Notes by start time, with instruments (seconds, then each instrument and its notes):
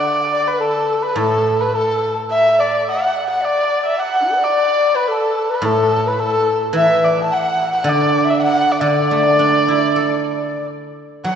Already playing: guzheng D3, erhu D5
0.32 dizi D5
0.48 erhu B4
0.52 dizi B4
0.59 dizi A4, erhu A4
1.02 erhu B4, dizi B4
1.16 guzheng A2, dizi A4, erhu A4
1.58 dizi B4, erhu B4
1.73 dizi A4, erhu A4
2.31 dizi E5, erhu E5
2.58 dizi D5, erhu D5
2.88 dizi F#5, erhu F#5
3.28 dizi F#5, erhu F#5
3.41 dizi D5, erhu D5
3.86 erhu E5
3.97 dizi F#5, erhu F#5
4.21 dizi D4 E4
4.28 dizi F#4 A4
4.35 dizi B4 D5
4.44 erhu D5
4.95 dizi B4, erhu B4
5.08 dizi A4, erhu A4
5.50 dizi B4, erhu B4
5.62 guzheng A2, dizi A4, erhu A4
6.07 dizi B4, erhu B4
6.20 erhu A4, dizi A4
6.73 guzheng E3, erhu E5, dizi E5
7.04 erhu D5
7.24 erhu A5
7.31 dizi F#5, erhu F#5
7.71 dizi F#5
7.77 erhu F#5
7.84 guzheng D3, dizi D5
7.89 erhu D5
8.25 dizi E5
8.30 erhu E5
8.39 dizi F#5
8.43 erhu F#5
8.72 erhu D5
8.81 guzheng D3, dizi D5, erhu D5
9.11 guzheng A3
9.39 guzheng D4
9.68 guzheng E4
9.96 guzheng A4
11.24 guzheng F#3, dizi F#5, erhu F#5